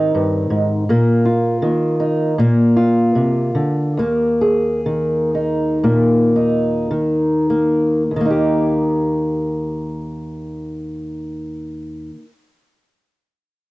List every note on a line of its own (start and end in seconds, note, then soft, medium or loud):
0.00 0.14 G#2 medium
0.00 0.84 D#3 medium
0.00 0.84 C4 medium
0.00 0.84 D#4 medium
0.00 0.84 G4 soft
0.15 0.50 G2 medium
0.50 0.88 G#2 medium
0.89 1.62 A#2 medium
0.89 2.39 A#3 medium
1.25 2.33 F4 soft
1.62 2.37 D#3 medium
2.00 2.33 D#4 soft
2.38 3.15 A#2 medium
2.38 3.99 A#3 medium
2.77 3.93 F4 medium
3.15 3.54 C3 medium
3.55 3.97 D3 medium
3.97 8.10 D#2 medium
3.97 5.83 A#3 soft
4.41 8.02 G#4 soft
4.86 6.90 D#3 soft
5.35 6.35 D#4 soft
5.84 6.91 A#2 medium
5.84 7.49 A#3 soft
6.36 8.02 D#4 soft
6.91 8.15 D#3 soft
7.50 8.02 A#3 soft
8.11 12.10 D#2 soft
8.16 12.15 D#3 soft
8.21 12.19 A#3 soft
8.26 12.24 D#4 soft
8.31 12.29 G4 soft